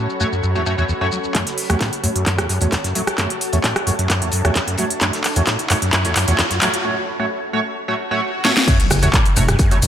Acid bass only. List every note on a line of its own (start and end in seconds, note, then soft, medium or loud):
0.20 0.24 F#2 loud
0.32 0.41 F#2 medium
0.43 0.57 F#2 loud
0.55 0.64 E2 medium
0.66 0.76 F#2 medium
0.78 0.84 E2 medium
0.89 0.93 E2 loud
1.01 1.10 F#2 medium
1.12 1.19 F#3 medium
1.35 1.45 F#2 medium
1.70 1.76 E2 loud
1.81 1.91 A2 medium
2.03 2.08 F#2 loud
2.16 2.25 F#2 medium
2.26 2.40 F#2 loud
2.38 2.48 E2 medium
2.49 2.59 F#2 medium
2.61 2.67 E2 loud
2.72 2.76 E2 loud
2.84 2.93 F#2 medium
2.95 3.02 F#3 medium
3.18 3.28 F#2 medium
3.53 3.59 E2 loud
3.64 3.74 A2 medium
3.87 3.91 F#2 loud
3.99 4.08 F#2 medium
4.10 4.23 F#2 loud
4.22 4.31 E2 medium
4.33 4.43 F#2 medium
4.45 4.51 E2 loud
4.55 4.59 E2 loud
4.67 4.76 F#2 medium
4.78 4.85 F#3 medium
5.01 5.11 F#2 medium
5.36 5.42 E2 loud
5.47 5.57 A2 medium
5.70 5.74 F#2 loud
5.82 5.91 F#2 medium
5.93 6.07 F#2 loud
6.05 6.14 E2 medium
6.16 6.26 F#2 medium
6.28 6.34 E2 loud
6.39 6.43 E2 loud
6.51 6.60 F#2 medium
6.62 6.68 F#3 medium
8.68 8.78 F#2 medium
9.03 9.09 E2 loud
9.13 9.23 A2 medium
9.36 9.40 F#2 loud
9.48 9.57 F#2 medium
9.59 9.73 F#2 loud
9.71 9.80 E2 medium
9.82 9.87 F#2 medium